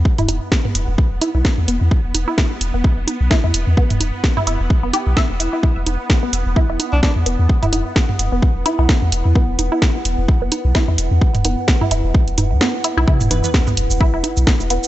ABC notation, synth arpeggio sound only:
X:1
M:4/4
L:1/16
Q:"Swing 16ths" 1/4=129
K:Clyd
V:1 name="Synth arpeggio sound"
z E E z2 B, z4 E E z2 B, z | z3 E E z2 B, z4 E E z2 | B, z4 E E z2 B, G z e z E E | E z4 B, z2 E E z4 B, z |
z E E z4 B, z2 E E z4 | B, z2 E E z4 B, z2 E E z2 | z2 B, z2 E E z4 z B, z E E | E z4 B, z2 E E z4 B, z |]